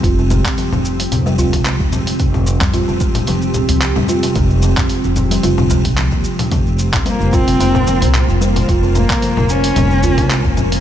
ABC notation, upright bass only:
X:1
M:4/4
L:1/16
Q:"Swing 16ths" 1/4=111
K:Bbdor
V:1 name="Upright bass" clef=bass
F,,,3 z2 F,,,3 F,,,3 C,,2 F,,,3 | F,,,3 F,,2 F,,,3 F,,,3 C,,2 F,,,3 | F,,,3 F,,2 F,,,3 F,,,3 C,,2 E,, z2 | F,,,3 F,,2 F,,,3 F,,,3 C,,2 F,,,3 |
F,,,3 F,,2 F,,,3 F,,,3 C,,2 F,,,3 |]